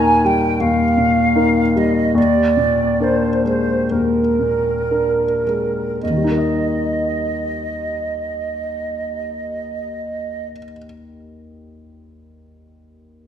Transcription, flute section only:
0, 0, Header, 1, 2, 480
1, 0, Start_track
1, 0, Key_signature, -3, "major"
1, 0, Tempo, 713436
1, 414, Tempo, 774194
1, 1374, Tempo, 847458
1, 1375, Time_signature, 4, 2, 24, 8
1, 1854, Tempo, 898204
1, 2334, Tempo, 990099
1, 2814, Tempo, 1111111
1, 3294, Tempo, 1027397
1, 4734, Tempo, 1048951
1, 6646, End_track
2, 0, Start_track
2, 0, Title_t, "Flute section"
2, 0, Program_c, 0, 73
2, 0, Note_on_c, 0, 80, 69
2, 164, Note_on_c, 0, 79, 61
2, 173, Note_off_c, 0, 80, 0
2, 401, Note_on_c, 0, 77, 64
2, 410, Note_off_c, 0, 79, 0
2, 1121, Note_off_c, 0, 77, 0
2, 1132, Note_on_c, 0, 75, 54
2, 1374, Note_on_c, 0, 74, 60
2, 1377, Note_off_c, 0, 75, 0
2, 1845, Note_off_c, 0, 74, 0
2, 1856, Note_on_c, 0, 72, 51
2, 2083, Note_off_c, 0, 72, 0
2, 2090, Note_on_c, 0, 72, 52
2, 2329, Note_off_c, 0, 72, 0
2, 2338, Note_on_c, 0, 70, 42
2, 3295, Note_on_c, 0, 75, 41
2, 3297, Note_off_c, 0, 70, 0
2, 5367, Note_off_c, 0, 75, 0
2, 6646, End_track
0, 0, End_of_file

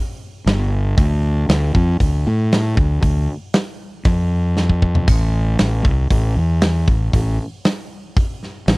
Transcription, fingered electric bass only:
0, 0, Header, 1, 2, 480
1, 0, Start_track
1, 0, Tempo, 513699
1, 907, Time_signature, 4, 2, 24, 8
1, 8201, End_track
2, 0, Start_track
2, 0, Title_t, "Fingered electric bass"
2, 0, Program_c, 0, 33
2, 431, Note_on_c, 0, 31, 94
2, 876, Note_off_c, 0, 31, 0
2, 911, Note_on_c, 0, 38, 90
2, 1356, Note_off_c, 0, 38, 0
2, 1389, Note_on_c, 0, 38, 81
2, 1611, Note_off_c, 0, 38, 0
2, 1638, Note_on_c, 0, 41, 91
2, 1856, Note_off_c, 0, 41, 0
2, 1871, Note_on_c, 0, 38, 75
2, 2093, Note_off_c, 0, 38, 0
2, 2121, Note_on_c, 0, 45, 91
2, 2562, Note_off_c, 0, 45, 0
2, 2591, Note_on_c, 0, 38, 94
2, 2813, Note_off_c, 0, 38, 0
2, 2832, Note_on_c, 0, 38, 77
2, 3054, Note_off_c, 0, 38, 0
2, 3786, Note_on_c, 0, 41, 93
2, 4711, Note_off_c, 0, 41, 0
2, 4752, Note_on_c, 0, 33, 83
2, 5197, Note_off_c, 0, 33, 0
2, 5237, Note_on_c, 0, 33, 74
2, 5457, Note_off_c, 0, 33, 0
2, 5471, Note_on_c, 0, 36, 87
2, 5694, Note_off_c, 0, 36, 0
2, 5707, Note_on_c, 0, 33, 78
2, 5931, Note_off_c, 0, 33, 0
2, 5947, Note_on_c, 0, 40, 87
2, 6395, Note_off_c, 0, 40, 0
2, 6429, Note_on_c, 0, 33, 92
2, 6653, Note_off_c, 0, 33, 0
2, 6665, Note_on_c, 0, 33, 76
2, 6890, Note_off_c, 0, 33, 0
2, 8108, Note_on_c, 0, 33, 100
2, 8201, Note_off_c, 0, 33, 0
2, 8201, End_track
0, 0, End_of_file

